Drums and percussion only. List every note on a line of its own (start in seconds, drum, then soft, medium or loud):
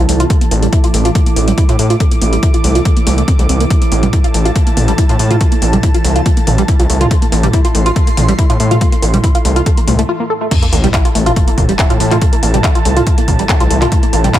0.09 open hi-hat loud
0.20 closed hi-hat medium
0.30 kick loud
0.30 closed hi-hat medium
0.41 closed hi-hat medium
0.51 open hi-hat loud
0.63 closed hi-hat medium
0.73 kick loud
0.73 closed hi-hat medium
0.84 closed hi-hat medium
0.94 open hi-hat loud
1.05 closed hi-hat medium
1.15 kick loud
1.15 closed hi-hat medium
1.26 closed hi-hat medium
1.36 open hi-hat loud
1.48 closed hi-hat medium
1.58 kick loud
1.58 closed hi-hat medium
1.69 closed hi-hat medium
1.79 open hi-hat loud
1.90 closed hi-hat medium
2.00 kick loud
2.00 closed hi-hat medium
2.11 closed hi-hat medium
2.22 open hi-hat loud
2.33 closed hi-hat medium
2.43 kick loud
2.43 closed hi-hat medium
2.54 closed hi-hat medium
2.64 open hi-hat loud
2.75 closed hi-hat medium
2.85 kick loud
2.85 closed hi-hat medium
2.97 closed hi-hat medium
3.07 open hi-hat loud
3.18 closed hi-hat soft
3.28 kick loud
3.28 closed hi-hat medium
3.39 closed hi-hat medium
3.49 open hi-hat loud
3.60 closed hi-hat soft
3.70 kick loud
3.70 closed hi-hat medium
3.82 closed hi-hat soft
3.92 open hi-hat loud
4.03 closed hi-hat soft
4.03 mid tom loud
4.13 kick loud
4.13 closed hi-hat medium
4.24 closed hi-hat medium
4.34 open hi-hat loud
4.45 closed hi-hat medium
4.56 kick loud
4.56 closed hi-hat medium
4.67 closed hi-hat medium
4.77 mid tom loud
4.77 open hi-hat loud
4.88 closed hi-hat soft
4.98 kick loud
4.98 closed hi-hat medium
5.09 closed hi-hat medium
5.19 open hi-hat loud
5.31 closed hi-hat soft
5.31 mid tom medium
5.41 kick loud
5.41 closed hi-hat medium
5.52 closed hi-hat medium
5.62 open hi-hat loud
5.73 closed hi-hat soft
5.73 mid tom loud
5.83 kick loud
5.83 closed hi-hat medium
5.94 closed hi-hat soft
6.04 open hi-hat loud
6.16 closed hi-hat soft
6.26 kick loud
6.26 closed hi-hat medium
6.37 closed hi-hat soft
6.47 mid tom medium
6.47 open hi-hat loud
6.58 closed hi-hat soft
6.68 kick loud
6.68 closed hi-hat medium
6.80 closed hi-hat medium
6.90 open hi-hat loud
7.01 closed hi-hat medium
7.01 mid tom medium
7.11 kick loud
7.11 closed hi-hat medium
7.22 closed hi-hat medium
7.32 open hi-hat medium
7.43 closed hi-hat medium
7.43 mid tom medium
7.53 kick loud
7.53 closed hi-hat medium
7.65 closed hi-hat medium
7.75 open hi-hat loud
7.86 closed hi-hat medium
7.96 kick loud
7.96 closed hi-hat medium
8.07 closed hi-hat medium
8.17 mid tom loud
8.17 open hi-hat loud
8.29 closed hi-hat medium
8.39 kick loud
8.39 closed hi-hat medium
8.50 closed hi-hat medium
8.60 open hi-hat loud
8.71 closed hi-hat medium
8.71 mid tom medium
8.81 kick loud
8.81 closed hi-hat medium
8.92 closed hi-hat medium
9.02 open hi-hat loud
9.14 closed hi-hat medium
9.14 mid tom medium
9.24 kick loud
9.24 closed hi-hat medium
9.35 closed hi-hat medium
9.45 open hi-hat loud
9.56 closed hi-hat medium
9.66 kick loud
9.66 closed hi-hat medium
9.77 closed hi-hat medium
9.88 mid tom medium
9.88 open hi-hat loud
9.99 closed hi-hat medium
10.51 kick loud
10.51 closed hi-hat medium
10.51 crash loud
10.63 closed hi-hat medium
10.73 open hi-hat loud
10.84 closed hi-hat medium
10.84 mid tom medium
10.94 kick loud
10.94 clap loud
10.94 closed hi-hat medium
11.05 closed hi-hat medium
11.15 open hi-hat loud
11.26 closed hi-hat medium
11.26 mid tom medium
11.36 kick loud
11.36 closed hi-hat medium
11.48 closed hi-hat medium
11.58 kick medium
11.58 mid tom medium
11.58 open hi-hat loud
11.69 closed hi-hat medium
11.79 kick loud
11.79 clap loud
11.79 closed hi-hat medium
11.90 closed hi-hat medium
12.00 open hi-hat loud
12.11 clap medium
12.11 closed hi-hat medium
12.11 mid tom medium
12.21 kick loud
12.21 closed hi-hat medium
12.33 closed hi-hat medium
12.43 open hi-hat loud
12.54 closed hi-hat medium
12.54 mid tom medium
12.64 kick loud
12.64 clap loud
12.64 closed hi-hat medium
12.75 closed hi-hat medium
12.85 open hi-hat loud
12.97 closed hi-hat medium
12.97 mid tom medium
13.07 kick loud
13.07 closed hi-hat medium
13.18 closed hi-hat medium
13.28 kick medium
13.28 mid tom medium
13.28 open hi-hat loud
13.39 closed hi-hat medium
13.49 kick loud
13.49 clap loud
13.49 closed hi-hat medium
13.60 closed hi-hat medium
13.70 open hi-hat loud
13.82 clap medium
13.82 closed hi-hat medium
13.82 mid tom medium
13.92 kick loud
13.92 closed hi-hat medium
14.03 closed hi-hat medium
14.13 open hi-hat loud
14.24 closed hi-hat medium
14.24 mid tom medium
14.34 kick loud
14.34 clap loud
14.34 closed hi-hat medium